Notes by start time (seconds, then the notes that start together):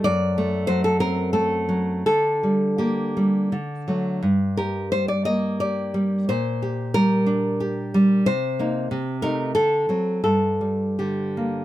0.04 F#2 D5
0.38 A3
0.67 F#3 C5
0.84 A4
1.00 C4 A#4
1.33 A3 A4
1.69 F#3
2.06 D3 A4
2.43 G3
2.78 A#3 G4
3.17 G3
3.52 D3
3.88 F#3 A3
4.23 G2
4.57 G4 A#4
4.92 G3 C5
5.08 D5
5.25 A#3 D#5
5.60 G4 D5
5.94 G3
6.29 A#2 C5
6.62 G4
6.94 G3 A#4
7.26 D4
7.60 G4
7.94 G3
8.26 C3 C5
8.59 A#3 D#4
8.91 C3
9.22 A3 D#4 A#4
9.55 D3 A4
9.89 F#3 C4
10.24 G2 A4
10.61 G3
10.99 D3 G4
11.37 A#3